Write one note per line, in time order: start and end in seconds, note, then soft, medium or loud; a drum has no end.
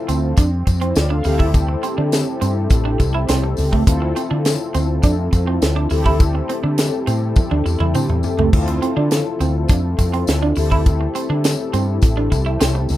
0.00 1.20 C4 medium
0.00 0.35 E4 medium
0.00 0.35 F4 medium
0.00 0.36 A4 medium
0.08 0.33 D2 loud
0.08 0.20 C4 medium
0.08 closed hi-hat medium
0.08 tambourine medium
0.37 0.62 F2 medium
0.37 0.49 D4 medium
0.37 kick loud
0.37 closed hi-hat medium
0.37 tambourine medium
0.67 0.91 F2 medium
0.67 muted clean electric guitar stroke soft
0.67 kick medium
0.67 closed hi-hat medium
0.67 tambourine soft
0.81 0.93 C4 medium
0.81 0.96 E4 medium
0.81 0.95 C5 medium
0.81 closed hi-hat soft
0.96 1.21 D2 medium
0.96 1.10 F4 medium
0.96 1.10 D5 medium
0.96 snare loud
0.96 closed hi-hat medium
0.96 tambourine medium
1.10 1.22 D4 medium
1.10 1.25 A4 medium
1.10 1.38 F5 medium
1.24 1.74 D2 loud
1.24 3.83 C4 medium
1.24 3.83 E4 medium
1.24 3.83 G4 medium
1.24 3.84 A4 medium
1.24 muted clean electric guitar stroke soft
1.24 open hi-hat medium
1.24 tambourine soft
1.39 1.51 E4 medium
1.39 kick medium
1.54 kick loud
1.54 closed hi-hat loud
1.54 tambourine soft
1.68 muted clean electric guitar stroke soft
1.83 1.95 C4 medium
1.83 closed hi-hat medium
1.83 tambourine soft
1.98 2.23 D3 medium
1.98 2.09 D4 medium
2.12 snare loud
2.12 closed hi-hat loud
2.12 tambourine loud
2.41 2.66 G2 loud
2.41 2.53 C4 medium
2.41 closed hi-hat medium
2.41 tambourine soft
2.70 2.95 A1 medium
2.70 kick loud
2.70 closed hi-hat medium
2.70 tambourine medium
2.85 2.97 D4 medium
3.00 3.24 C2 loud
3.00 muted clean electric guitar stroke soft
3.00 kick medium
3.00 closed hi-hat medium
3.00 tambourine medium
3.14 3.26 E4 medium
3.28 3.54 C2 medium
3.28 3.40 C4 medium
3.28 snare loud
3.28 closed hi-hat loud
3.28 tambourine medium
3.44 muted clean electric guitar stroke soft
3.57 3.83 C#2 loud
3.57 open hi-hat medium
3.57 tambourine medium
3.73 3.84 A3 medium
3.73 kick medium
3.86 4.12 D2 loud
3.86 5.87 C4 medium
3.86 5.87 E4 medium
3.86 5.87 F4 medium
3.86 5.87 A4 medium
3.86 kick loud
3.86 closed hi-hat loud
3.86 tambourine soft
4.02 muted clean electric guitar stroke soft
4.16 4.28 C4 medium
4.16 closed hi-hat medium
4.16 tambourine soft
4.31 4.56 D3 loud
4.31 4.42 D4 medium
4.45 snare loud
4.45 closed hi-hat loud
4.45 tambourine loud
4.74 4.99 D2 loud
4.74 4.86 C4 medium
4.74 closed hi-hat medium
4.74 tambourine medium
5.03 5.28 F2 medium
5.03 5.15 D4 medium
5.03 kick loud
5.03 closed hi-hat medium
5.03 tambourine medium
5.32 5.57 F2 medium
5.32 muted clean electric guitar stroke soft
5.32 kick medium
5.32 closed hi-hat medium
5.32 tambourine medium
5.47 5.59 C4 medium
5.62 5.86 D2 medium
5.62 snare loud
5.62 closed hi-hat loud
5.62 tambourine medium
5.76 5.88 D4 medium
5.90 6.40 D2 loud
5.90 8.49 C4 medium
5.90 8.49 E4 medium
5.90 8.49 G4 medium
5.90 8.50 A4 medium
5.90 muted clean electric guitar stroke soft
5.90 open hi-hat medium
5.90 tambourine soft
6.06 6.17 E4 medium
6.06 kick medium
6.20 kick loud
6.20 closed hi-hat loud
6.20 tambourine soft
6.35 muted clean electric guitar stroke soft
6.49 6.61 C4 medium
6.49 closed hi-hat medium
6.64 6.88 D3 loud
6.64 6.75 D4 medium
6.78 snare loud
6.78 closed hi-hat medium
6.78 tambourine loud
7.07 7.32 A2 medium
7.07 7.19 C4 medium
7.07 closed hi-hat medium
7.07 tambourine soft
7.36 kick loud
7.36 high tom medium
7.36 tambourine medium
7.51 7.63 D2 loud
7.51 7.63 D4 medium
7.51 high tom medium
7.66 7.78 E2 medium
7.66 muted clean electric guitar stroke soft
7.66 tambourine soft
7.80 7.92 E2 loud
7.80 7.92 E4 medium
7.80 mid tom medium
7.94 8.07 D3 medium
7.94 8.06 C4 medium
7.94 mid tom medium
7.94 tambourine medium
8.09 8.22 E2 medium
8.09 muted clean electric guitar stroke soft
8.09 mid tom medium
8.23 floor tom medium
8.23 tambourine soft
8.38 8.51 C#2 medium
8.38 8.50 A3 medium
8.38 floor tom medium
8.52 8.78 D2 loud
8.52 10.53 C4 medium
8.52 10.53 E4 medium
8.52 10.53 F4 medium
8.52 10.53 A4 medium
8.52 kick loud
8.52 splash medium
8.67 muted clean electric guitar stroke soft
8.67 closed hi-hat medium
8.82 8.94 C4 medium
8.82 closed hi-hat medium
8.97 9.21 D3 loud
8.97 9.08 D4 medium
9.11 snare loud
9.11 closed hi-hat loud
9.11 tambourine loud
9.40 9.65 D2 medium
9.40 9.52 C4 medium
9.40 closed hi-hat medium
9.40 tambourine soft
9.68 9.94 F2 medium
9.68 9.81 D4 medium
9.68 kick loud
9.68 closed hi-hat medium
9.68 tambourine medium
9.98 10.23 F2 medium
9.98 muted clean electric guitar stroke soft
9.98 kick medium
9.98 closed hi-hat medium
9.98 tambourine medium
10.13 10.25 C4 medium
10.13 closed hi-hat soft
10.27 10.52 D2 medium
10.27 snare loud
10.27 closed hi-hat loud
10.27 tambourine medium
10.42 10.54 D4 medium
10.56 11.06 D2 loud
10.56 12.97 C4 medium
10.56 12.97 E4 medium
10.56 12.97 G4 medium
10.56 12.97 A4 medium
10.56 muted clean electric guitar stroke soft
10.56 open hi-hat medium
10.56 tambourine medium
10.71 10.83 E4 medium
10.71 kick medium
10.86 kick loud
10.86 closed hi-hat loud
10.86 tambourine soft
11.01 muted clean electric guitar stroke soft
11.15 11.27 C4 medium
11.15 closed hi-hat medium
11.15 tambourine soft
11.30 11.54 D3 medium
11.30 11.41 D4 medium
11.44 snare loud
11.44 closed hi-hat loud
11.44 tambourine loud
11.73 11.98 G2 loud
11.73 11.85 C4 medium
11.73 closed hi-hat medium
11.73 tambourine soft
12.02 12.27 A1 medium
12.02 kick loud
12.02 closed hi-hat loud
12.02 tambourine medium
12.17 12.29 D4 medium
12.32 12.56 C2 loud
12.32 muted clean electric guitar stroke soft
12.32 kick medium
12.32 closed hi-hat medium
12.32 tambourine medium
12.46 12.58 E4 medium
12.60 12.86 C2 medium
12.60 12.72 C4 medium
12.60 snare loud
12.60 closed hi-hat loud
12.60 tambourine medium
12.75 muted clean electric guitar stroke soft
12.89 12.97 C#2 loud
12.89 open hi-hat medium
12.89 tambourine medium